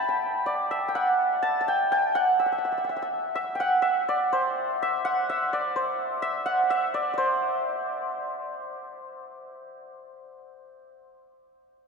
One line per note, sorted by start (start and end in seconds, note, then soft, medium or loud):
0.00 0.70 E5 medium
0.00 1.42 A5 loud
0.00 1.65 B5 medium
0.09 0.88 G5 medium
0.46 2.92 D5 medium
0.71 2.39 E5 medium
0.88 1.01 G5 medium
0.95 1.74 F#5 loud
1.43 1.60 A5 loud
1.61 3.55 A5 medium
1.68 1.91 G5 medium
1.92 2.21 G5 loud
2.15 3.60 F#5 loud
2.40 2.46 E5 medium
2.46 2.52 E5 medium
2.52 2.58 E5 medium
2.58 2.64 E5 soft
2.65 2.72 E5 medium
2.72 2.77 E5 medium
2.78 2.84 E5 medium
2.84 2.89 E5 medium
2.89 2.96 E5 medium
2.96 3.02 E5 medium
3.02 3.35 E5 medium
3.35 3.82 E5 loud
3.55 3.66 G5 medium
3.60 5.04 F#5 loud
3.82 4.82 E5 loud
4.09 5.53 D5 loud
4.33 5.75 C5 medium
4.82 5.29 E5 loud
5.05 6.45 F#5 loud
5.30 6.22 E5 loud
5.53 6.94 D5 medium
5.76 7.17 C5 medium
6.22 6.70 E5 loud
6.46 8.61 F#5 loud
6.70 9.01 E5 loud
6.94 7.13 D5 medium
7.14 9.59 D5 medium
7.18 11.03 C5 medium